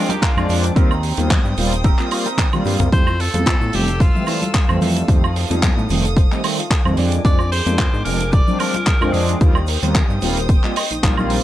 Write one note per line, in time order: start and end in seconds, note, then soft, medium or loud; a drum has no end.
0.00 0.11 F3 medium
0.00 0.11 G#3 medium
0.00 0.11 C4 medium
0.00 0.11 D4 loud
0.00 0.11 F4 loud
0.00 0.73 A#4 medium
0.00 0.73 G#5 medium
0.00 0.73 D6 medium
0.09 0.29 D4 medium
0.09 0.29 F4 medium
0.09 0.23 G4 medium
0.09 0.29 G#4 medium
0.09 0.30 A#4 medium
0.09 closed hi-hat medium
0.09 low conga medium
0.09 cabasa medium
0.09 shaker medium
0.22 0.64 F4 medium
0.22 kick loud
0.22 clap loud
0.22 closed hi-hat medium
0.22 cabasa soft
0.22 shaker medium
0.36 0.47 F2 loud
0.36 0.47 F3 loud
0.36 0.48 G#3 medium
0.36 0.48 C4 medium
0.36 0.48 D4 loud
0.36 high woodblock medium
0.36 shaker medium
0.48 0.71 F2 loud
0.48 0.72 F3 medium
0.48 0.72 G#3 medium
0.48 0.73 C4 medium
0.48 0.73 D4 loud
0.48 muted clean electric guitar stroke soft
0.48 open hi-hat loud
0.48 cabasa medium
0.63 muted clean electric guitar stroke medium
0.63 closed hi-hat medium
0.63 cabasa medium
0.63 shaker medium
0.75 1.13 D#2 loud
0.75 0.92 G3 loud
0.75 0.92 A#3 medium
0.75 1.17 C4 loud
0.75 0.92 C4 medium
0.75 1.17 D#4 medium
0.75 0.93 F4 loud
0.75 1.18 G4 loud
0.75 1.18 A#4 loud
0.75 2.90 C5 medium
0.75 2.90 G5 medium
0.75 2.90 D#6 medium
0.75 kick loud
0.75 closed hi-hat medium
0.75 cabasa soft
0.75 shaker medium
0.91 high woodblock medium
0.91 shaker medium
1.03 open hi-hat loud
1.03 cabasa loud
1.17 1.39 D#2 loud
1.17 1.32 G3 medium
1.17 1.32 A#3 medium
1.17 1.32 C4 medium
1.17 1.32 F4 medium
1.17 closed hi-hat medium
1.17 high conga medium
1.17 cabasa medium
1.17 shaker medium
1.30 kick loud
1.30 clap loud
1.30 closed hi-hat medium
1.30 low conga medium
1.30 cabasa soft
1.30 shaker medium
1.45 1.55 G2 loud
1.45 shaker soft
1.56 1.94 D#1 medium
1.56 1.73 G3 medium
1.56 1.74 A#3 medium
1.56 1.74 C4 medium
1.56 1.74 F4 medium
1.56 muted clean electric guitar stroke soft
1.56 open hi-hat loud
1.56 cabasa loud
1.72 closed hi-hat medium
1.72 cabasa medium
1.72 shaker medium
1.84 2.05 C4 medium
1.84 2.05 D#4 medium
1.84 2.05 G4 medium
1.84 2.06 A#4 loud
1.84 kick loud
1.84 closed hi-hat medium
1.84 cabasa soft
1.84 shaker medium
1.99 2.09 G3 medium
1.99 2.09 A#3 medium
1.99 2.09 C4 medium
1.99 2.09 F4 loud
1.99 clap soft
1.99 shaker soft
2.11 2.27 G3 medium
2.11 2.27 A#3 medium
2.11 2.27 C4 medium
2.11 2.28 F4 loud
2.11 open hi-hat loud
2.11 cabasa loud
2.11 high woodblock medium
2.25 2.45 C4 medium
2.25 2.46 D#4 medium
2.25 2.46 G4 medium
2.25 2.46 A#4 loud
2.25 closed hi-hat medium
2.25 cabasa medium
2.25 shaker medium
2.38 kick loud
2.38 clap loud
2.38 closed hi-hat medium
2.38 high tom medium
2.38 cabasa soft
2.38 shaker medium
2.52 2.63 G3 loud
2.52 2.63 A#3 medium
2.52 2.64 C4 medium
2.52 2.64 F4 loud
2.52 high tom medium
2.52 low conga medium
2.52 high woodblock medium
2.52 shaker medium
2.65 2.77 G2 loud
2.65 2.89 G3 medium
2.65 2.89 A#3 medium
2.65 2.89 C4 medium
2.65 2.89 F4 loud
2.65 muted clean electric guitar stroke soft
2.65 open hi-hat loud
2.65 cabasa medium
2.79 2.90 C2 medium
2.79 muted clean electric guitar stroke medium
2.79 closed hi-hat medium
2.79 mid tom medium
2.79 high conga medium
2.79 cabasa medium
2.79 shaker medium
2.91 3.29 F2 loud
2.91 3.08 E3 loud
2.91 3.08 G3 medium
2.91 3.08 A3 medium
2.91 3.08 C4 loud
2.91 2.97 E4 loud
2.91 6.94 A4 medium
2.91 3.22 C5 loud
2.91 6.94 F5 medium
2.91 5.07 E6 medium
2.91 kick loud
2.91 closed hi-hat medium
2.91 cabasa soft
2.91 shaker medium
3.07 3.11 F4 medium
3.07 high woodblock medium
3.07 shaker soft
3.20 3.27 A4 medium
3.20 3.77 A4 loud
3.20 open hi-hat loud
3.20 cabasa loud
3.34 3.55 F2 loud
3.34 3.48 E3 medium
3.34 3.48 G3 medium
3.34 3.48 A3 medium
3.34 3.48 C4 medium
3.34 3.40 C5 medium
3.34 closed hi-hat medium
3.34 high conga medium
3.34 cabasa medium
3.34 shaker medium
3.46 3.51 F4 loud
3.46 kick loud
3.46 clap loud
3.46 closed hi-hat medium
3.46 cabasa soft
3.46 shaker medium
3.61 3.71 A2 medium
3.61 3.68 E4 medium
3.61 shaker soft
3.73 4.10 F1 medium
3.73 3.89 E3 medium
3.73 3.89 G3 medium
3.73 3.89 A3 medium
3.73 3.90 C4 loud
3.73 3.81 F4 medium
3.73 4.03 G4 loud
3.73 open hi-hat loud
3.73 cabasa loud
3.87 3.95 A4 medium
3.87 closed hi-hat medium
3.87 cabasa medium
3.87 shaker medium
4.00 4.82 F4 medium
4.00 4.08 C5 loud
4.00 kick loud
4.00 closed hi-hat medium
4.00 cabasa soft
4.00 shaker medium
4.14 4.25 E3 medium
4.14 4.25 G3 medium
4.14 4.25 A3 medium
4.14 4.25 C4 loud
4.14 4.19 E5 medium
4.14 low conga medium
4.14 shaker soft
4.26 4.43 E3 medium
4.26 4.43 G3 medium
4.26 4.43 A3 medium
4.26 4.43 C4 loud
4.26 4.35 E4 medium
4.26 open hi-hat loud
4.26 cabasa loud
4.26 high woodblock medium
4.42 4.49 F4 medium
4.42 closed hi-hat medium
4.42 low conga loud
4.42 cabasa medium
4.42 shaker medium
4.54 4.62 A4 medium
4.54 kick loud
4.54 clap loud
4.54 closed hi-hat medium
4.54 shaker medium
4.69 4.79 F2 loud
4.69 4.80 E3 loud
4.69 4.80 G3 medium
4.69 4.80 A3 medium
4.69 4.80 C4 loud
4.69 4.76 C5 medium
4.69 high woodblock medium
4.69 shaker medium
4.81 5.03 F2 loud
4.81 5.05 E3 medium
4.81 5.05 G3 medium
4.81 5.05 A3 medium
4.81 5.05 C4 medium
4.81 4.86 E5 loud
4.81 open hi-hat loud
4.81 cabasa medium
4.96 5.03 E4 medium
4.96 closed hi-hat medium
4.96 cabasa medium
4.96 shaker medium
5.08 5.45 F2 loud
5.08 5.24 D#3 loud
5.08 5.25 G3 medium
5.08 5.25 A3 medium
5.08 5.25 C4 loud
5.08 5.13 D#4 loud
5.08 6.96 D#6 medium
5.08 kick loud
5.08 closed hi-hat medium
5.08 cabasa soft
5.08 shaker medium
5.24 5.27 F4 medium
5.24 high woodblock medium
5.24 shaker soft
5.36 5.43 A4 medium
5.36 open hi-hat loud
5.36 cabasa medium
5.49 5.71 F2 loud
5.49 5.64 D#3 medium
5.49 5.64 G3 medium
5.49 5.64 A3 medium
5.49 5.65 C4 medium
5.49 5.57 C5 medium
5.49 closed hi-hat medium
5.49 high conga medium
5.49 cabasa medium
5.49 shaker medium
5.63 5.67 F4 loud
5.63 kick loud
5.63 clap loud
5.63 closed hi-hat medium
5.63 low conga medium
5.63 cabasa soft
5.63 shaker medium
5.77 5.87 A2 medium
5.77 5.84 D#4 medium
5.77 shaker medium
5.89 6.26 F1 medium
5.89 6.06 D#3 medium
5.89 6.06 G3 medium
5.89 6.06 A3 medium
5.89 6.06 C4 loud
5.89 5.97 F4 medium
5.89 open hi-hat loud
5.89 cabasa medium
6.05 6.11 A4 medium
6.05 closed hi-hat medium
6.05 cabasa medium
6.05 shaker medium
6.17 6.24 C5 loud
6.17 kick loud
6.17 closed hi-hat medium
6.17 cabasa soft
6.17 shaker medium
6.31 6.41 D#3 medium
6.31 6.41 G3 medium
6.31 6.41 A3 medium
6.31 6.42 C4 loud
6.31 6.35 D#5 medium
6.31 clap soft
6.31 shaker medium
6.44 6.60 D#3 medium
6.44 6.60 G3 medium
6.44 6.60 A3 medium
6.44 6.60 C4 loud
6.44 6.52 D#4 medium
6.44 open hi-hat loud
6.44 cabasa medium
6.44 high woodblock medium
6.58 6.65 F4 medium
6.58 closed hi-hat medium
6.58 cabasa medium
6.58 shaker medium
6.71 6.78 A4 medium
6.71 kick loud
6.71 clap loud
6.71 closed hi-hat medium
6.71 shaker medium
6.85 6.95 F2 loud
6.85 6.96 D#3 loud
6.85 6.96 G3 medium
6.85 6.96 A3 medium
6.85 6.97 C4 loud
6.85 6.92 C5 medium
6.85 low conga medium
6.85 high woodblock medium
6.85 shaker soft
6.97 7.20 F2 loud
6.97 7.21 F3 medium
6.97 7.21 G#3 medium
6.97 7.22 C4 medium
6.97 7.22 D4 loud
6.97 9.39 A#4 medium
6.97 7.03 D5 loud
6.97 9.39 G#5 medium
6.97 9.39 D6 medium
6.97 open hi-hat loud
6.97 cabasa medium
7.12 7.19 D4 medium
7.12 closed hi-hat medium
7.12 cabasa medium
7.12 shaker medium
7.24 7.61 F2 loud
7.24 7.41 F3 loud
7.24 7.41 G#3 medium
7.24 7.41 C4 medium
7.24 7.41 D4 loud
7.24 7.30 D4 loud
7.24 7.50 D5 loud
7.24 kick loud
7.24 closed hi-hat medium
7.24 cabasa soft
7.24 shaker medium
7.39 7.44 F4 medium
7.39 high woodblock medium
7.39 shaker soft
7.52 7.60 G#4 medium
7.52 8.02 C5 loud
7.52 open hi-hat loud
7.52 cabasa loud
7.66 7.87 F2 loud
7.66 7.80 F3 medium
7.66 7.81 G#3 medium
7.66 7.81 C4 medium
7.66 7.81 D4 medium
7.66 7.73 A#4 medium
7.66 closed hi-hat medium
7.66 high conga medium
7.66 cabasa medium
7.66 shaker medium
7.79 7.84 F4 loud
7.79 kick loud
7.79 clap loud
7.79 closed hi-hat medium
7.79 shaker medium
7.93 8.03 G#2 medium
7.93 8.00 D4 medium
7.93 shaker soft
8.05 8.43 F1 medium
8.05 8.21 F3 medium
8.05 8.22 G#3 medium
8.05 8.22 C4 medium
8.05 8.22 D4 medium
8.05 8.14 F4 medium
8.05 8.34 A#4 loud
8.05 open hi-hat loud
8.05 cabasa medium
8.20 8.27 G#4 medium
8.20 closed hi-hat medium
8.20 cabasa medium
8.20 shaker medium
8.32 8.41 A#4 loud
8.32 8.61 D5 loud
8.32 kick loud
8.32 closed hi-hat medium
8.32 cabasa soft
8.32 shaker medium
8.47 8.57 F3 medium
8.47 8.58 G#3 medium
8.47 8.58 C4 medium
8.47 8.58 D4 loud
8.47 8.52 D5 medium
8.47 low conga medium
8.47 shaker medium
8.59 8.76 F3 medium
8.59 8.76 G#3 medium
8.59 8.76 C4 medium
8.59 8.68 D4 medium
8.59 8.76 D4 loud
8.59 9.14 A#4 loud
8.59 open hi-hat loud
8.59 cabasa medium
8.59 high woodblock medium
8.74 8.81 F4 medium
8.74 closed hi-hat medium
8.74 low conga medium
8.74 cabasa soft
8.74 shaker medium
8.86 8.95 G#4 medium
8.86 kick loud
8.86 clap loud
8.86 closed hi-hat medium
8.86 cabasa soft
8.86 shaker medium
9.01 9.11 F2 loud
9.01 9.12 F3 loud
9.01 9.12 G#3 medium
9.01 9.13 C4 medium
9.01 9.13 D4 loud
9.01 9.08 A#4 medium
9.01 high woodblock medium
9.01 shaker soft
9.13 9.36 F2 loud
9.13 9.37 F3 medium
9.13 9.37 G#3 medium
9.13 9.38 C4 medium
9.13 9.38 D4 loud
9.13 9.41 G#4 medium
9.13 9.19 D5 loud
9.13 open hi-hat loud
9.13 cabasa loud
9.28 9.35 D4 medium
9.28 closed hi-hat medium
9.28 cabasa medium
9.28 shaker medium
9.41 9.78 D#2 loud
9.41 9.57 G3 loud
9.41 9.57 A#3 medium
9.41 9.57 C4 medium
9.41 9.46 D#4 loud
9.41 9.57 F4 loud
9.41 11.44 C5 medium
9.41 11.44 G5 medium
9.41 11.44 D#6 medium
9.41 kick loud
9.41 closed hi-hat medium
9.41 cabasa soft
9.41 shaker medium
9.55 9.60 G4 medium
9.55 high woodblock medium
9.55 shaker medium
9.67 9.76 A#4 medium
9.67 open hi-hat loud
9.67 cabasa medium
9.82 10.03 D#2 loud
9.82 9.97 G3 medium
9.82 9.97 A#3 medium
9.82 9.97 C4 medium
9.82 9.97 F4 medium
9.82 9.89 C5 medium
9.82 closed hi-hat medium
9.82 high conga loud
9.82 cabasa soft
9.82 shaker medium
9.94 10.00 G4 loud
9.94 kick loud
9.94 clap loud
9.94 closed hi-hat medium
9.94 low conga medium
9.94 cabasa soft
9.94 shaker medium
10.10 10.20 G2 medium
10.10 10.16 D#4 medium
10.10 shaker medium
10.21 10.59 D#1 medium
10.21 10.38 G3 medium
10.21 10.38 A#3 medium
10.21 10.38 C4 medium
10.21 10.38 F4 loud
10.21 10.30 G4 medium
10.21 open hi-hat loud
10.21 cabasa medium
10.36 10.43 A#4 medium
10.36 closed hi-hat medium
10.36 cabasa medium
10.36 shaker medium
10.49 10.57 C5 loud
10.49 kick loud
10.49 closed hi-hat medium
10.49 cabasa soft
10.49 shaker medium
10.63 10.74 G3 medium
10.63 10.74 A#3 medium
10.63 10.74 C4 medium
10.63 10.74 F4 loud
10.63 10.68 D#5 medium
10.63 clap soft
10.63 shaker medium
10.76 10.84 D#5 loud
10.76 open hi-hat loud
10.76 cabasa medium
10.76 high woodblock medium
10.91 11.01 A#1 soft
10.91 10.97 D#4 medium
10.91 closed hi-hat medium
10.91 cabasa soft
10.91 shaker medium
11.03 11.40 A#1 loud
11.03 11.16 G3 loud
11.03 11.16 A#3 medium
11.03 11.16 C4 medium
11.03 11.15 D#4 loud
11.03 11.16 F4 loud
11.03 kick loud
11.03 clap loud
11.03 closed hi-hat medium
11.03 shaker medium
11.17 11.40 G3 medium
11.17 11.41 A#3 medium
11.17 11.41 C4 medium
11.17 11.25 D#4 loud
11.17 11.41 F4 loud
11.17 low conga medium
11.17 high woodblock medium
11.17 shaker soft
11.30 11.41 A#4 medium
11.30 open hi-hat loud
11.30 cabasa medium